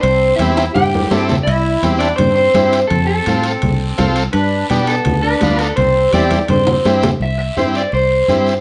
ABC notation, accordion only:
X:1
M:4/4
L:1/8
Q:1/4=167
K:C
V:1 name="Accordion"
C2 E2 G3 z | E3 D C C3 | C C6 z | D2 z B,2 D3 |
C2 G2 C3 z | z8 |]